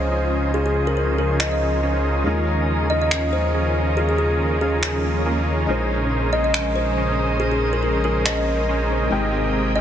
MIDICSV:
0, 0, Header, 1, 8, 480
1, 0, Start_track
1, 0, Tempo, 428571
1, 607, Time_signature, 4, 2, 24, 8
1, 10986, End_track
2, 0, Start_track
2, 0, Title_t, "Kalimba"
2, 0, Program_c, 0, 108
2, 606, Note_on_c, 0, 68, 82
2, 690, Note_off_c, 0, 68, 0
2, 736, Note_on_c, 0, 68, 72
2, 807, Note_off_c, 0, 68, 0
2, 977, Note_on_c, 0, 70, 85
2, 1047, Note_off_c, 0, 70, 0
2, 1086, Note_on_c, 0, 70, 73
2, 1170, Note_off_c, 0, 70, 0
2, 1326, Note_on_c, 0, 70, 84
2, 1487, Note_off_c, 0, 70, 0
2, 1566, Note_on_c, 0, 75, 85
2, 1650, Note_off_c, 0, 75, 0
2, 1697, Note_on_c, 0, 75, 74
2, 1767, Note_off_c, 0, 75, 0
2, 3247, Note_on_c, 0, 75, 84
2, 3330, Note_off_c, 0, 75, 0
2, 3378, Note_on_c, 0, 75, 73
2, 3448, Note_off_c, 0, 75, 0
2, 3727, Note_on_c, 0, 72, 86
2, 3887, Note_off_c, 0, 72, 0
2, 4446, Note_on_c, 0, 68, 82
2, 4530, Note_off_c, 0, 68, 0
2, 4578, Note_on_c, 0, 68, 70
2, 4648, Note_off_c, 0, 68, 0
2, 4686, Note_on_c, 0, 68, 84
2, 4847, Note_off_c, 0, 68, 0
2, 5166, Note_on_c, 0, 68, 86
2, 5646, Note_off_c, 0, 68, 0
2, 7086, Note_on_c, 0, 75, 82
2, 7170, Note_off_c, 0, 75, 0
2, 7216, Note_on_c, 0, 75, 71
2, 7287, Note_off_c, 0, 75, 0
2, 7566, Note_on_c, 0, 72, 88
2, 7727, Note_off_c, 0, 72, 0
2, 8285, Note_on_c, 0, 68, 85
2, 8369, Note_off_c, 0, 68, 0
2, 8416, Note_on_c, 0, 68, 73
2, 8487, Note_off_c, 0, 68, 0
2, 8657, Note_on_c, 0, 70, 83
2, 8727, Note_off_c, 0, 70, 0
2, 8766, Note_on_c, 0, 70, 73
2, 8850, Note_off_c, 0, 70, 0
2, 9006, Note_on_c, 0, 70, 87
2, 9167, Note_off_c, 0, 70, 0
2, 9245, Note_on_c, 0, 75, 88
2, 9330, Note_off_c, 0, 75, 0
2, 9377, Note_on_c, 0, 75, 69
2, 9447, Note_off_c, 0, 75, 0
2, 10926, Note_on_c, 0, 75, 85
2, 10986, Note_off_c, 0, 75, 0
2, 10986, End_track
3, 0, Start_track
3, 0, Title_t, "Supersaw synth"
3, 0, Program_c, 1, 81
3, 126, Note_on_c, 1, 61, 88
3, 126, Note_on_c, 1, 65, 81
3, 126, Note_on_c, 1, 68, 81
3, 126, Note_on_c, 1, 72, 83
3, 127, Note_on_c, 1, 75, 100
3, 580, Note_off_c, 1, 61, 0
3, 580, Note_off_c, 1, 65, 0
3, 580, Note_off_c, 1, 68, 0
3, 580, Note_off_c, 1, 72, 0
3, 580, Note_off_c, 1, 75, 0
3, 606, Note_on_c, 1, 61, 94
3, 606, Note_on_c, 1, 68, 86
3, 607, Note_on_c, 1, 65, 86
3, 607, Note_on_c, 1, 72, 88
3, 607, Note_on_c, 1, 75, 105
3, 1300, Note_off_c, 1, 61, 0
3, 1300, Note_off_c, 1, 68, 0
3, 1300, Note_off_c, 1, 72, 0
3, 1300, Note_off_c, 1, 75, 0
3, 1301, Note_off_c, 1, 65, 0
3, 1326, Note_on_c, 1, 61, 78
3, 1326, Note_on_c, 1, 65, 71
3, 1326, Note_on_c, 1, 68, 72
3, 1326, Note_on_c, 1, 72, 70
3, 1326, Note_on_c, 1, 75, 86
3, 2020, Note_off_c, 1, 61, 0
3, 2020, Note_off_c, 1, 65, 0
3, 2020, Note_off_c, 1, 68, 0
3, 2020, Note_off_c, 1, 72, 0
3, 2020, Note_off_c, 1, 75, 0
3, 2046, Note_on_c, 1, 68, 83
3, 2047, Note_on_c, 1, 61, 91
3, 2047, Note_on_c, 1, 65, 81
3, 2047, Note_on_c, 1, 72, 79
3, 2047, Note_on_c, 1, 75, 99
3, 2500, Note_off_c, 1, 65, 0
3, 2500, Note_off_c, 1, 68, 0
3, 2500, Note_off_c, 1, 72, 0
3, 2501, Note_off_c, 1, 61, 0
3, 2501, Note_off_c, 1, 75, 0
3, 2527, Note_on_c, 1, 61, 94
3, 2527, Note_on_c, 1, 65, 87
3, 2527, Note_on_c, 1, 68, 88
3, 2527, Note_on_c, 1, 70, 87
3, 2527, Note_on_c, 1, 75, 100
3, 3221, Note_off_c, 1, 61, 0
3, 3221, Note_off_c, 1, 65, 0
3, 3221, Note_off_c, 1, 68, 0
3, 3221, Note_off_c, 1, 70, 0
3, 3221, Note_off_c, 1, 75, 0
3, 3247, Note_on_c, 1, 61, 78
3, 3247, Note_on_c, 1, 65, 71
3, 3247, Note_on_c, 1, 68, 70
3, 3247, Note_on_c, 1, 70, 72
3, 3247, Note_on_c, 1, 75, 87
3, 3940, Note_off_c, 1, 61, 0
3, 3940, Note_off_c, 1, 65, 0
3, 3940, Note_off_c, 1, 68, 0
3, 3940, Note_off_c, 1, 70, 0
3, 3940, Note_off_c, 1, 75, 0
3, 3966, Note_on_c, 1, 61, 91
3, 3966, Note_on_c, 1, 65, 80
3, 3966, Note_on_c, 1, 68, 81
3, 3966, Note_on_c, 1, 70, 80
3, 3966, Note_on_c, 1, 75, 100
3, 4420, Note_off_c, 1, 61, 0
3, 4420, Note_off_c, 1, 65, 0
3, 4420, Note_off_c, 1, 68, 0
3, 4420, Note_off_c, 1, 70, 0
3, 4420, Note_off_c, 1, 75, 0
3, 4446, Note_on_c, 1, 61, 96
3, 4446, Note_on_c, 1, 65, 87
3, 4446, Note_on_c, 1, 70, 87
3, 4446, Note_on_c, 1, 75, 105
3, 4447, Note_on_c, 1, 68, 89
3, 5140, Note_off_c, 1, 61, 0
3, 5140, Note_off_c, 1, 65, 0
3, 5140, Note_off_c, 1, 68, 0
3, 5140, Note_off_c, 1, 70, 0
3, 5140, Note_off_c, 1, 75, 0
3, 5166, Note_on_c, 1, 61, 79
3, 5166, Note_on_c, 1, 65, 73
3, 5166, Note_on_c, 1, 70, 71
3, 5166, Note_on_c, 1, 75, 85
3, 5167, Note_on_c, 1, 68, 72
3, 5860, Note_off_c, 1, 61, 0
3, 5860, Note_off_c, 1, 65, 0
3, 5860, Note_off_c, 1, 68, 0
3, 5860, Note_off_c, 1, 70, 0
3, 5860, Note_off_c, 1, 75, 0
3, 5886, Note_on_c, 1, 61, 92
3, 5886, Note_on_c, 1, 65, 81
3, 5886, Note_on_c, 1, 68, 81
3, 5886, Note_on_c, 1, 70, 82
3, 5886, Note_on_c, 1, 75, 100
3, 6340, Note_off_c, 1, 61, 0
3, 6340, Note_off_c, 1, 65, 0
3, 6340, Note_off_c, 1, 68, 0
3, 6340, Note_off_c, 1, 70, 0
3, 6340, Note_off_c, 1, 75, 0
3, 6366, Note_on_c, 1, 61, 97
3, 6366, Note_on_c, 1, 68, 86
3, 6366, Note_on_c, 1, 70, 88
3, 6366, Note_on_c, 1, 72, 83
3, 6366, Note_on_c, 1, 75, 104
3, 7060, Note_off_c, 1, 61, 0
3, 7060, Note_off_c, 1, 68, 0
3, 7060, Note_off_c, 1, 70, 0
3, 7060, Note_off_c, 1, 72, 0
3, 7060, Note_off_c, 1, 75, 0
3, 7086, Note_on_c, 1, 61, 75
3, 7086, Note_on_c, 1, 68, 73
3, 7086, Note_on_c, 1, 70, 72
3, 7086, Note_on_c, 1, 72, 70
3, 7086, Note_on_c, 1, 75, 87
3, 7780, Note_off_c, 1, 61, 0
3, 7780, Note_off_c, 1, 68, 0
3, 7780, Note_off_c, 1, 70, 0
3, 7780, Note_off_c, 1, 72, 0
3, 7780, Note_off_c, 1, 75, 0
3, 7806, Note_on_c, 1, 61, 90
3, 7806, Note_on_c, 1, 68, 83
3, 7806, Note_on_c, 1, 70, 84
3, 7806, Note_on_c, 1, 72, 82
3, 7806, Note_on_c, 1, 75, 99
3, 8260, Note_off_c, 1, 61, 0
3, 8260, Note_off_c, 1, 68, 0
3, 8260, Note_off_c, 1, 70, 0
3, 8260, Note_off_c, 1, 72, 0
3, 8260, Note_off_c, 1, 75, 0
3, 8286, Note_on_c, 1, 61, 95
3, 8286, Note_on_c, 1, 68, 84
3, 8286, Note_on_c, 1, 70, 84
3, 8286, Note_on_c, 1, 72, 89
3, 8286, Note_on_c, 1, 75, 103
3, 8980, Note_off_c, 1, 61, 0
3, 8980, Note_off_c, 1, 68, 0
3, 8980, Note_off_c, 1, 70, 0
3, 8980, Note_off_c, 1, 72, 0
3, 8980, Note_off_c, 1, 75, 0
3, 9006, Note_on_c, 1, 61, 80
3, 9006, Note_on_c, 1, 68, 71
3, 9006, Note_on_c, 1, 70, 75
3, 9007, Note_on_c, 1, 72, 73
3, 9007, Note_on_c, 1, 75, 86
3, 9700, Note_off_c, 1, 61, 0
3, 9700, Note_off_c, 1, 68, 0
3, 9700, Note_off_c, 1, 70, 0
3, 9700, Note_off_c, 1, 72, 0
3, 9700, Note_off_c, 1, 75, 0
3, 9726, Note_on_c, 1, 61, 91
3, 9726, Note_on_c, 1, 68, 81
3, 9726, Note_on_c, 1, 70, 84
3, 9726, Note_on_c, 1, 72, 82
3, 9726, Note_on_c, 1, 75, 99
3, 10180, Note_off_c, 1, 61, 0
3, 10180, Note_off_c, 1, 68, 0
3, 10180, Note_off_c, 1, 70, 0
3, 10180, Note_off_c, 1, 72, 0
3, 10180, Note_off_c, 1, 75, 0
3, 10206, Note_on_c, 1, 60, 97
3, 10206, Note_on_c, 1, 67, 87
3, 10206, Note_on_c, 1, 68, 87
3, 10206, Note_on_c, 1, 70, 90
3, 10206, Note_on_c, 1, 75, 100
3, 10900, Note_off_c, 1, 60, 0
3, 10900, Note_off_c, 1, 67, 0
3, 10900, Note_off_c, 1, 68, 0
3, 10900, Note_off_c, 1, 70, 0
3, 10900, Note_off_c, 1, 75, 0
3, 10926, Note_on_c, 1, 60, 77
3, 10926, Note_on_c, 1, 67, 71
3, 10926, Note_on_c, 1, 68, 71
3, 10926, Note_on_c, 1, 70, 73
3, 10927, Note_on_c, 1, 75, 87
3, 10986, Note_off_c, 1, 60, 0
3, 10986, Note_off_c, 1, 67, 0
3, 10986, Note_off_c, 1, 68, 0
3, 10986, Note_off_c, 1, 70, 0
3, 10986, Note_off_c, 1, 75, 0
3, 10986, End_track
4, 0, Start_track
4, 0, Title_t, "Felt piano"
4, 0, Program_c, 2, 0
4, 0, Control_c, 2, 64, 127
4, 0, Note_on_c, 2, 56, 77
4, 0, Note_on_c, 2, 61, 67
4, 0, Note_on_c, 2, 63, 71
4, 0, Note_on_c, 2, 65, 70
4, 0, Note_on_c, 2, 72, 84
4, 2487, Note_off_c, 2, 56, 0
4, 2495, Note_off_c, 2, 61, 0
4, 2500, Note_off_c, 2, 63, 0
4, 2504, Note_on_c, 2, 56, 75
4, 2506, Note_off_c, 2, 65, 0
4, 2511, Note_off_c, 2, 72, 0
4, 2516, Note_on_c, 2, 61, 68
4, 2527, Note_on_c, 2, 63, 70
4, 2538, Note_on_c, 2, 65, 68
4, 2544, Control_c, 2, 64, 0
4, 2549, Note_on_c, 2, 70, 84
4, 2709, Control_c, 2, 64, 127
4, 6327, Note_off_c, 2, 56, 0
4, 6335, Note_off_c, 2, 61, 0
4, 6340, Note_off_c, 2, 63, 0
4, 6343, Note_on_c, 2, 56, 76
4, 6346, Note_off_c, 2, 65, 0
4, 6352, Note_off_c, 2, 70, 0
4, 6355, Note_on_c, 2, 61, 68
4, 6366, Note_on_c, 2, 63, 67
4, 6377, Note_on_c, 2, 65, 68
4, 6379, Control_c, 2, 64, 0
4, 6388, Note_on_c, 2, 72, 85
4, 6576, Control_c, 2, 64, 127
4, 10168, Note_off_c, 2, 56, 0
4, 10174, Note_off_c, 2, 61, 0
4, 10180, Note_off_c, 2, 63, 0
4, 10185, Note_on_c, 2, 56, 78
4, 10186, Note_off_c, 2, 65, 0
4, 10191, Note_off_c, 2, 72, 0
4, 10196, Note_on_c, 2, 60, 67
4, 10207, Note_on_c, 2, 63, 69
4, 10218, Note_on_c, 2, 79, 69
4, 10221, Control_c, 2, 64, 0
4, 10229, Note_on_c, 2, 70, 85
4, 10389, Control_c, 2, 64, 127
4, 10986, Note_off_c, 2, 56, 0
4, 10986, Note_off_c, 2, 60, 0
4, 10986, Note_off_c, 2, 63, 0
4, 10986, Note_off_c, 2, 70, 0
4, 10986, Note_off_c, 2, 79, 0
4, 10986, End_track
5, 0, Start_track
5, 0, Title_t, "String section"
5, 0, Program_c, 3, 48
5, 0, Note_on_c, 3, 49, 76
5, 0, Note_on_c, 3, 53, 69
5, 0, Note_on_c, 3, 63, 84
5, 0, Note_on_c, 3, 72, 71
5, 2488, Note_off_c, 3, 72, 0
5, 2489, Note_off_c, 3, 49, 0
5, 2526, Note_on_c, 3, 49, 77
5, 2526, Note_on_c, 3, 56, 71
5, 6322, Note_off_c, 3, 53, 0
5, 6328, Note_off_c, 3, 56, 0
5, 6365, Note_on_c, 3, 56, 70
5, 6366, Note_on_c, 3, 72, 72
5, 10162, Note_off_c, 3, 49, 0
5, 10162, Note_off_c, 3, 63, 0
5, 10168, Note_off_c, 3, 72, 0
5, 10207, Note_on_c, 3, 48, 77
5, 10207, Note_on_c, 3, 58, 70
5, 10207, Note_on_c, 3, 79, 87
5, 10986, Note_off_c, 3, 48, 0
5, 10986, Note_off_c, 3, 56, 0
5, 10986, Note_off_c, 3, 58, 0
5, 10986, Note_off_c, 3, 79, 0
5, 10986, End_track
6, 0, Start_track
6, 0, Title_t, "Detuned saw bass"
6, 0, Program_c, 4, 39
6, 0, Note_on_c, 4, 37, 88
6, 2505, Note_off_c, 4, 37, 0
6, 2527, Note_on_c, 4, 39, 87
6, 6345, Note_off_c, 4, 39, 0
6, 6366, Note_on_c, 4, 34, 86
6, 10184, Note_off_c, 4, 34, 0
6, 10207, Note_on_c, 4, 32, 88
6, 10986, Note_off_c, 4, 32, 0
6, 10986, End_track
7, 0, Start_track
7, 0, Title_t, "Swell"
7, 0, Program_c, 5, 103
7, 5406, Note_on_c, 5, 60, 56
7, 6367, Note_off_c, 5, 60, 0
7, 10986, End_track
8, 0, Start_track
8, 0, Title_t, "Drums"
8, 1566, Note_on_c, 9, 26, 83
8, 1678, Note_off_c, 9, 26, 0
8, 3486, Note_on_c, 9, 26, 86
8, 3598, Note_off_c, 9, 26, 0
8, 5406, Note_on_c, 9, 26, 90
8, 5518, Note_off_c, 9, 26, 0
8, 7326, Note_on_c, 9, 26, 91
8, 7438, Note_off_c, 9, 26, 0
8, 9246, Note_on_c, 9, 26, 95
8, 9358, Note_off_c, 9, 26, 0
8, 10986, End_track
0, 0, End_of_file